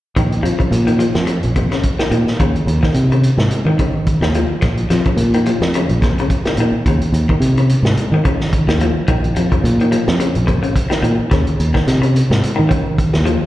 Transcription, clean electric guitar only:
0.16 0.36 D#3 medium
0.43 0.54 F3 medium
0.59 0.79 C#3 medium
0.87 0.96 D#3 medium
0.99 1.19 F3 medium
1.27 muted clean electric guitar stroke medium
1.56 1.67 C3 medium
1.72 1.91 C#3 medium
2.00 2.08 D#3 medium
2.11 2.31 D#3 medium
2.41 2.60 C#3 medium
2.83 3.02 D#3 medium
3.12 3.31 C#3 medium
3.67 3.75 D#3 medium
3.80 3.99 C#3 medium
4.23 4.32 D#3 medium
4.35 4.55 F3 medium
4.62 muted clean electric guitar stroke medium
4.90 5.01 F3 medium
5.06 5.26 C#3 medium
5.34 5.43 D#3 medium
5.47 5.66 F3 medium
5.75 5.95 C#3 medium
6.04 6.14 C3 medium
6.20 6.39 C#3 medium
6.47 6.55 D#3 medium
6.60 6.79 D#3 medium
6.88 7.07 C#3 medium
7.30 7.49 D#3 medium
7.58 7.77 C#3 medium
8.14 8.22 D#3 medium
8.25 8.45 C#3 medium
8.69 8.77 D#3 medium
8.81 9.01 F3 medium
9.08 9.28 D#3 medium
9.37 9.47 F3 medium
9.52 9.71 C#3 medium
9.81 9.89 D#3 medium
9.92 10.12 F3 medium
10.20 10.39 C#3 medium
10.47 10.58 C3 medium
10.63 10.82 C#3 medium
10.90 10.99 D#3 medium
11.03 11.22 D#3 medium
11.31 11.51 C#3 medium
11.74 11.94 D#3 medium
12.02 12.21 C#3 medium
12.56 12.65 D#3 medium
12.69 12.89 C#3 medium
13.25 13.45 F3 medium

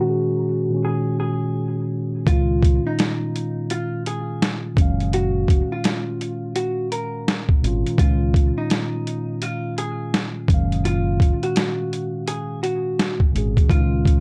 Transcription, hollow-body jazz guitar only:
0.01 0.80 F#4 medium
0.85 1.16 G#4 medium
1.20 1.75 G#4 medium
2.27 2.82 F4 medium
2.87 3.66 D#4 medium
3.71 4.03 F4 medium
4.07 4.61 G#4 medium
5.14 5.68 F#4 medium
5.72 6.52 F4 medium
6.56 6.88 F#4 medium
6.92 7.46 A#4 medium
7.99 8.54 F4 medium
8.58 9.43 D#4 medium
9.43 9.74 F4 medium
9.78 10.33 G#4 medium
10.85 11.40 F4 medium
11.43 12.23 F#4 medium
12.28 12.59 G#4 medium
12.63 13.18 F#4 medium
13.70 14.20 F4 loud

